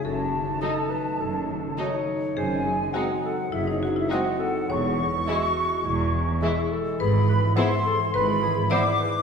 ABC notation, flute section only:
X:1
M:4/4
L:1/16
Q:1/4=104
K:C#m
V:1 name="Flute section"
a12- a2 z2 | g4 f4 e d f e f4 | c'12- c'2 z2 | [K:Ephr] b4 c'4 b4 d'4 |]